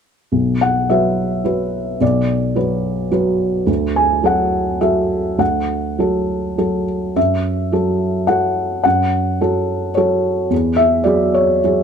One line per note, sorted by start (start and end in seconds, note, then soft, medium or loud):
0.32 0.88 B1 soft
0.61 0.88 F#5 soft
0.89 1.42 F#3 soft
0.89 1.42 F#4 soft
0.89 1.42 B4 soft
0.89 1.97 E5 soft
1.44 1.97 F#3 soft
1.44 1.97 F#4 soft
1.44 1.97 B4 soft
2.01 2.55 B1 soft
2.01 3.09 D5 medium
2.56 3.08 F#3 soft
2.56 3.08 F#4 soft
2.56 3.08 B4 soft
3.11 3.63 F#3 soft
3.11 3.63 F#4 soft
3.11 3.64 B4 soft
3.66 4.22 D2 soft
3.96 4.22 G#5 medium
4.23 4.77 F#3 soft
4.23 4.77 F#4 soft
4.23 4.78 A4 soft
4.23 4.78 F#5 soft
4.81 5.35 F#3 soft
4.81 5.36 F#4 soft
4.81 5.36 A4 soft
4.81 5.35 E5 soft
5.38 5.97 D2 soft
5.38 6.83 F#5 soft
5.98 6.54 F#3 soft
5.98 6.55 F#4 soft
5.98 6.55 A4 soft
6.58 7.12 F#3 soft
6.58 7.12 F#4 soft
6.58 7.12 A4 soft
7.16 7.71 F#2 soft
7.16 8.25 E5 medium
7.72 8.24 F#3 soft
7.72 8.25 F#4 soft
7.72 8.25 A4 soft
8.27 8.81 F#3 soft
8.27 8.81 F#4 soft
8.27 8.81 A4 soft
8.27 8.80 F#5 soft
8.83 9.39 F#2 soft
8.83 9.91 F#5 medium
9.41 9.92 F#3 soft
9.41 9.92 F#4 soft
9.41 9.92 A4 soft
9.95 10.48 F#3 soft
9.95 10.48 F#4 soft
9.95 10.48 A4 soft
9.95 10.47 C#5 medium
10.50 11.04 E2 soft
10.76 11.03 E5 medium
11.04 11.60 F#3 soft
11.04 11.60 F#4 soft
11.04 11.60 G#4 soft
11.04 11.32 D5 medium
11.34 11.83 C#5 medium
11.64 11.83 F#3 soft
11.64 11.83 F#4 soft
11.64 11.83 G#4 soft